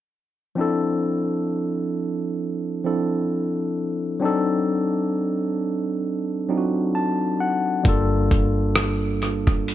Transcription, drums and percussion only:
7.85 kick, closed hi-hat
8.31 kick, closed hi-hat
8.76 cross-stick, closed hi-hat
9.22 cross-stick, closed hi-hat
9.47 kick, cross-stick
9.68 closed hi-hat

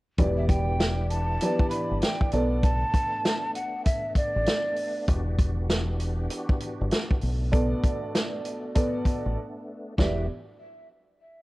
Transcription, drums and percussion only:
0.18 kick, closed hi-hat
0.49 kick, closed hi-hat
0.80 snare, closed hi-hat
1.10 closed hi-hat
1.41 closed hi-hat
1.59 kick
1.71 closed hi-hat
2.02 snare, closed hi-hat
2.21 kick
2.32 closed hi-hat
2.63 kick, closed hi-hat
2.94 kick, closed hi-hat
3.25 snare, closed hi-hat
3.55 closed hi-hat
3.86 kick, closed hi-hat
4.15 kick, closed hi-hat
4.46 snare, closed hi-hat
4.76 open hi-hat
5.08 kick, closed hi-hat
5.39 kick, closed hi-hat
5.70 snare, closed hi-hat
6.00 closed hi-hat
6.30 closed hi-hat
6.49 kick
6.60 closed hi-hat
6.91 snare, closed hi-hat
7.11 kick
7.21 open hi-hat
7.53 kick, closed hi-hat
7.84 kick, closed hi-hat
8.15 snare, closed hi-hat
8.45 closed hi-hat
8.75 kick, closed hi-hat
9.05 kick, closed hi-hat
9.98 kick, snare

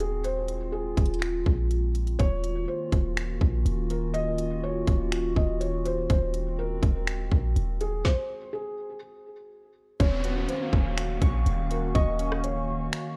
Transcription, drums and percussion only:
0.00 closed hi-hat
0.24 closed hi-hat
0.48 closed hi-hat
0.97 kick, closed hi-hat
1.06 closed hi-hat
1.14 closed hi-hat
1.22 finger snap, closed hi-hat
1.46 kick
1.71 closed hi-hat
1.95 closed hi-hat
2.07 closed hi-hat
2.19 kick, closed hi-hat
2.44 closed hi-hat
2.92 kick, closed hi-hat
3.17 finger snap, closed hi-hat
3.41 kick
3.66 closed hi-hat
3.90 closed hi-hat
4.15 closed hi-hat
4.39 closed hi-hat
4.87 kick, closed hi-hat
5.12 finger snap, closed hi-hat
5.36 kick
5.61 closed hi-hat
5.85 closed hi-hat
6.10 kick, closed hi-hat
6.34 closed hi-hat
6.83 kick, closed hi-hat
7.07 finger snap, closed hi-hat
7.31 kick
7.56 closed hi-hat
7.80 closed hi-hat
8.05 kick, snare
10.00 kick, closed hi-hat
10.24 closed hi-hat
10.49 closed hi-hat
10.73 kick
10.98 finger snap, closed hi-hat
11.22 kick, closed hi-hat
11.46 closed hi-hat
11.71 closed hi-hat
11.95 kick, closed hi-hat
12.19 closed hi-hat
12.32 cross-stick
12.44 closed hi-hat
12.93 finger snap, closed hi-hat

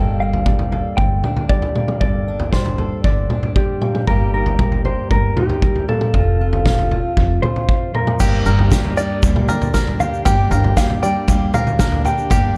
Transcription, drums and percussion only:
0.33 floor tom
0.46 kick, mid tom
0.59 floor tom
0.72 floor tom
0.98 kick, floor tom
1.24 floor tom, mid tom
1.37 floor tom
1.49 kick
1.62 floor tom
1.76 mid tom
1.88 mid tom
2.01 kick, floor tom
2.40 floor tom
2.52 kick, snare, floor tom, mid tom
2.66 floor tom
2.78 floor tom
3.04 kick, floor tom
3.30 floor tom, mid tom
3.43 floor tom
3.56 kick
3.82 mid tom
3.95 mid tom
4.07 kick, floor tom
4.46 floor tom
4.59 kick, mid tom
4.72 floor tom
4.85 floor tom
5.11 kick, floor tom
5.37 floor tom, mid tom
5.49 floor tom
5.62 kick
5.75 floor tom
5.89 mid tom
6.01 mid tom
6.14 kick, floor tom
6.53 floor tom
6.66 kick, snare, floor tom, mid tom
6.79 floor tom
6.91 floor tom
7.17 kick, floor tom
7.43 floor tom, mid tom
7.56 floor tom
7.69 kick
7.95 mid tom
8.07 mid tom
8.20 kick, floor tom, crash, shaker
8.46 shaker
8.59 floor tom
8.72 kick, snare, floor tom, shaker
8.84 floor tom
8.97 shaker
9.23 kick, floor tom, shaker
9.36 mid tom
9.48 floor tom, mid tom, shaker
9.62 floor tom, shaker
9.74 kick, snare, mid tom, shaker
9.87 floor tom
10.00 floor tom, shaker
10.14 shaker
10.26 kick, floor tom, shaker
10.51 floor tom, shaker
10.64 floor tom
10.77 kick, snare, floor tom, shaker
10.90 floor tom
11.03 shaker
11.28 kick, floor tom, shaker
11.54 floor tom, mid tom, shaker
11.67 floor tom, shaker
11.79 kick, snare, mid tom, shaker
11.92 floor tom
12.05 floor tom, shaker
12.18 shaker
12.30 kick, floor tom, shaker

